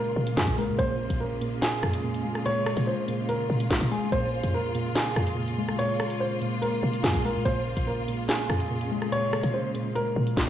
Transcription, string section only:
Already playing: C#3 G#3 A#3 F4
0.79 F4
4.12 A#3
7.46 C#3 G#3

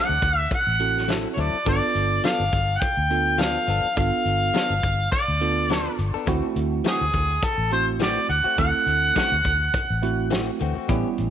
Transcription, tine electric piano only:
Already playing: C4 E4 F#4 A4
0.80 C4 E4 F#4 A4
1.66 B3 D4 F4 A4
3.10 B3 D4 F4 A4
3.97 B3 D4 F4 A4
5.41 B3 D4 F4 A4
6.27 A3 C4 E4 F#4
7.72 A3 C4 E4 F#4
8.58 A3 C4 E4 A4
10.02 A3 C4 E4 F#4
10.88 G3 B3 C#4 E4

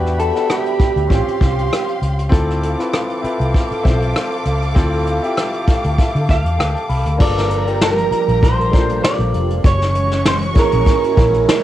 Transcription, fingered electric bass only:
Already playing: E2
0.80 muted fingered electric bass stroke
0.96 D2
1.11 A1
1.27 muted fingered electric bass stroke
1.41 C2
2.02 C#2
2.32 D2
3.24 muted fingered electric bass stroke
3.40 C2
3.71 muted fingered electric bass stroke
3.85 B1
4.46 C#2
4.76 D2
5.68 muted fingered electric bass stroke
5.85 D2
6.15 D3
6.29 D2
6.45 E2
6.59 D2
6.89 C2
7.06 D2
7.20 G1
8.11 muted fingered electric bass stroke
8.28 A#1
9.19 A#1
9.34 F1
9.64 F#1
10.56 muted fingered electric bass stroke
10.73 A#1
11.17 A#1

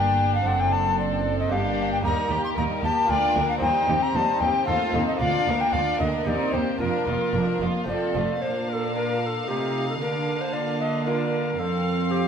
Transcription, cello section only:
Already playing: G2
0.47 F#2
1.52 G2
2.05 D#2
2.31 D#2
2.57 D#2
2.83 D#2
3.10 D2
3.36 D2
3.62 D#2
3.88 D#2
4.15 D#2
4.42 D#2
4.68 D#2
4.94 D#2
5.21 D2
5.47 D2
5.74 D2
6.01 D2
6.27 D#2
6.54 D#2
6.81 F2
7.08 F2
7.35 F2
7.62 F2
7.88 F2
8.15 F2
8.42 A#2
9.48 C3
10.01 D3
11.59 F2

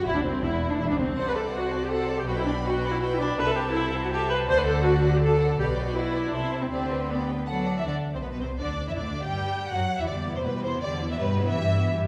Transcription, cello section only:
0.05 E2
0.15 D2
0.24 C2
0.43 E2
0.70 D2
0.80 E2
0.89 D2
0.99 C2
1.17 C3
2.27 B2
3.38 C3
4.48 D3
5.58 B2
6.32 C3
6.72 D3
7.48 F#3
7.77 E3
7.86 D3
8.15 C3
8.23 B2
8.33 B2
8.42 C3
8.61 D3
8.88 E3
8.98 D3
9.26 G3
9.72 F#3
10.00 E3
10.09 D3
10.36 C3
10.46 B2
10.55 B2
10.65 C3
10.83 D3
11.11 E3
11.21 B2
11.48 E3

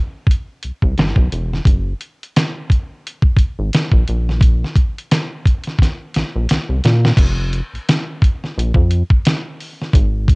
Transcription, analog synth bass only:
0.65 C2
0.83 C2
0.98 G1
1.17 B1
1.33 E1
1.66 F#1
3.38 G#1
3.59 G#1
3.93 A#1
4.09 A#1
6.16 A#1
6.36 A#1
6.51 C2
6.69 C2
6.85 A#2
7.18 F1
7.74 A#1
8.58 A#1
8.76 F2
9.95 G#1

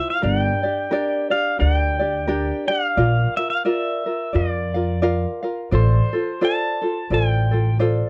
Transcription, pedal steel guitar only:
0.10 F5
0.24 F#5
0.41 G5
1.31 F5
1.60 F#5
1.77 G5
2.68 F5
3.37 E5
3.50 F5
3.66 E5
4.36 D5
5.75 C5
6.45 A5
7.14 G5

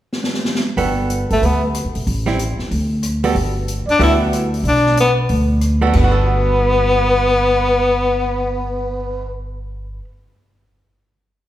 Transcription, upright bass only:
0.77 G1
1.31 G#1
1.42 D2
1.85 F#2
1.95 B1
2.07 A1
2.58 muted upright bass stroke
2.71 D2
3.35 G1
3.87 muted upright bass stroke
3.99 D2
4.63 B1
5.30 D2
5.93 G1

